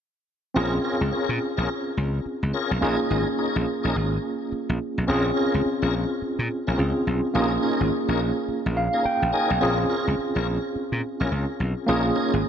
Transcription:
0.54 slap bass A#1, tine electric piano C4 C#4 F4 G#4, tonewheel organ C#4 F4 G#4 A#4
0.84 tonewheel organ C#4 F4 G#4 A#4
1.01 slap bass C#2
1.12 tonewheel organ C#4 F4 G#4 A#4, muted slap bass stroke
1.29 slap bass A#2
1.57 slap bass A#1, tonewheel organ C#4 F4 G#4 A#4
1.97 slap bass C#2
2.26 muted slap bass stroke
2.43 slap bass C#2
2.53 tonewheel organ C#4 F4 G#4 A#4
2.71 slap bass B1
2.81 slap bass A#1, tine electric piano A#3 C#4 F4 G#4, tonewheel organ C#4 D#4 G#4 A#4
3.10 slap bass G#1, tonewheel organ C#4 D#4 G#4 A#4
3.38 tonewheel organ C#4 D#4 G#4 A#4
3.56 slap bass A#1
3.83 slap bass A#1, tonewheel organ C#4 D#4 G#4 A#4
3.96 slap bass G#1
4.52 muted slap bass stroke
4.69 slap bass A#1
4.98 slap bass B1
5.07 slap bass A#1, tine electric piano C4 C#4 F4 G#4, tonewheel organ C#4 F4 G#4 A#4
5.36 tonewheel organ C#4 F4 G#4 A#4
5.54 slap bass C#2
5.66 muted slap bass stroke
5.82 slap bass A#1, tonewheel organ C#4 F4 G#4 A#4
6.22 muted slap bass stroke
6.39 slap bass A#2
6.67 slap bass A#1, tonewheel organ C#4 F4 G#4 A#4
6.77 slap bass C#2, tine electric piano C4 C#4 F4 G#4
7.07 slap bass B1
7.34 slap bass A#1, tine electric piano A#3 C#4 F4 G4, tonewheel organ C#4 D#4 G#4 A#4
7.42 tine electric piano G#4
7.63 tonewheel organ C#4 D#4 G#4 A#4
7.81 slap bass G#1
7.92 muted slap bass stroke
8.08 slap bass A#1, tonewheel organ C#4 D#4 G#4 A#4
8.48 muted slap bass stroke
8.66 slap bass A#1
8.77 tine electric piano F5
8.93 tonewheel organ C#4 D#4 G#4 A#4
9.05 tine electric piano G5, muted slap bass stroke
9.22 slap bass A#1
9.32 tonewheel organ C#4 D#4 G#4 A#4, tine electric piano G#5
9.50 slap bass B1
9.61 slap bass A#1, tine electric piano C4 C#4 F4 G#4, tonewheel organ C#4 F4 G#4 A#4
9.89 tonewheel organ C#4 F4 G#4 A#4
10.08 slap bass C#2
10.19 muted slap bass stroke
10.35 slap bass A#1, tonewheel organ C#4 F4 G#4 A#4
10.76 muted slap bass stroke
10.92 slap bass A#2
11.20 slap bass A#1, tonewheel organ C#4 F4 G#4 A#4
11.32 slap bass C#2
11.60 slap bass B1
11.86 slap bass A#1, tine electric piano A#3 C#4 F4 G#4, tonewheel organ C#4 D#4 G#4 A#4
12.16 tonewheel organ C#4 D#4 G#4 A#4
12.33 slap bass G#1

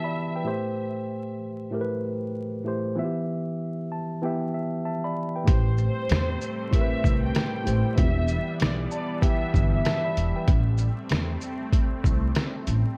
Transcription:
Already playing: tine electric piano E3 B3 G4 E5 G5 A5, violin section E5
0.04 tine electric piano D5 B5
0.36 tine electric piano B4 G5
0.44 tine electric piano A2 A3 G4 C5
1.71 tine electric piano A2 A3 G4 A#4
1.81 tine electric piano B4
2.64 tine electric piano A2 A3 G4 C5
2.95 tine electric piano E3 B3 F4 E5
3.04 tine electric piano G4
3.92 tine electric piano A5
4.21 tine electric piano E3 B3 G4 E5 G5
4.54 tine electric piano E5
4.85 tine electric piano E5 A5
5.04 tine electric piano D5 B5
5.36 tine electric piano B4 G5
5.44 tine electric piano A2 A3 G4 C5, analog synth pad G3 A3 C4, closed hi-hat
5.48 upright bass A1, violin section C5, kick
5.78 shaker
6.10 upright bass E2, cross-stick, snare, closed hi-hat
6.41 shaker
6.71 tine electric piano A2 A3 G4 A#4, violin section E5, kick, closed hi-hat
6.81 tine electric piano B4
7.04 upright bass C2, kick, shaker
7.23 violin section G5
7.35 cross-stick, snare, closed hi-hat
7.64 upright bass A1, tine electric piano A2 A3 G4 C5, closed hi-hat, shaker
7.95 upright bass E1, tine electric piano E3 B3 F4 E5, analog synth pad E3 B3, violin section E5, kick, closed hi-hat
8.04 tine electric piano G4
8.28 shaker
8.60 upright bass B1, violin section D5, cross-stick, snare, closed hi-hat
8.91 violin section D5, tine electric piano A5, shaker
9.21 tine electric piano E3 B3 G4 E5 G5, violin section E5, kick, closed hi-hat
9.54 upright bass G1, tine electric piano E5, kick, shaker
9.73 violin section E5
9.85 tine electric piano E5 A5, cross-stick, snare, closed hi-hat
10.04 tine electric piano D5 B5
10.17 upright bass E1, closed hi-hat, shaker
10.36 tine electric piano B4 G5
10.47 upright bass A1, analog synth pad A3 C4, kick, closed hi-hat
10.78 shaker
11.10 upright bass E2, cross-stick, snare, closed hi-hat
11.41 shaker
11.73 kick, closed hi-hat
12.04 upright bass C2, kick, shaker
12.35 cross-stick, snare, closed hi-hat
12.67 upright bass A1, closed hi-hat, shaker

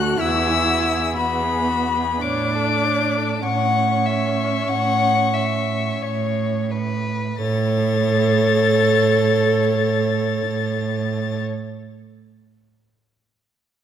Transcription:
Already playing: cello D2, viola F#4, violin A4 F#6
0.19 cello E2, viola E4, violin F#4 E6
0.46 violin G#4
0.68 violin F#4
0.92 violin G#4
1.16 cello E2, viola B3, violin F#4 B5
1.43 violin G#4
1.68 violin F#4
1.96 violin G#4
2.21 cello A2, viola D4, violin C#5 D6
2.54 violin A4
2.84 violin C#5
3.15 violin A4
3.43 cello A2, viola C#4, violin F#5 C#6
4.05 violin E5
4.66 cello A2, violin F#5
5.34 violin E5
5.98 cello A2, violin C#5
6.71 violin B4
7.37 cello A2, viola A4, violin A6
7.41 violin C#5

